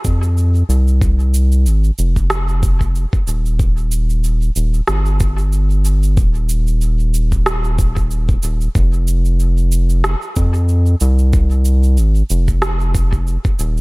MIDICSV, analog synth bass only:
0, 0, Header, 1, 2, 480
1, 0, Start_track
1, 0, Key_signature, -4, "minor"
1, 0, Tempo, 645161
1, 754, Time_signature, 4, 2, 24, 8
1, 10273, End_track
2, 0, Start_track
2, 0, Title_t, "Analog synth bass"
2, 0, Program_c, 0, 38
2, 37, Note_on_c, 0, 41, 89
2, 472, Note_off_c, 0, 41, 0
2, 513, Note_on_c, 0, 36, 101
2, 1235, Note_on_c, 0, 32, 84
2, 1246, Note_off_c, 0, 36, 0
2, 1421, Note_off_c, 0, 32, 0
2, 1478, Note_on_c, 0, 29, 87
2, 2276, Note_off_c, 0, 29, 0
2, 2437, Note_on_c, 0, 27, 81
2, 3352, Note_off_c, 0, 27, 0
2, 3394, Note_on_c, 0, 27, 86
2, 3580, Note_off_c, 0, 27, 0
2, 3634, Note_on_c, 0, 31, 93
2, 4594, Note_on_c, 0, 27, 98
2, 4605, Note_off_c, 0, 31, 0
2, 6231, Note_off_c, 0, 27, 0
2, 6275, Note_on_c, 0, 27, 81
2, 6461, Note_off_c, 0, 27, 0
2, 6514, Note_on_c, 0, 29, 99
2, 7553, Note_off_c, 0, 29, 0
2, 7713, Note_on_c, 0, 41, 88
2, 8150, Note_off_c, 0, 41, 0
2, 8194, Note_on_c, 0, 36, 102
2, 8912, Note_on_c, 0, 32, 85
2, 8923, Note_off_c, 0, 36, 0
2, 9099, Note_off_c, 0, 32, 0
2, 9154, Note_on_c, 0, 29, 86
2, 9954, Note_off_c, 0, 29, 0
2, 10115, Note_on_c, 0, 27, 86
2, 10273, Note_off_c, 0, 27, 0
2, 10273, End_track
0, 0, End_of_file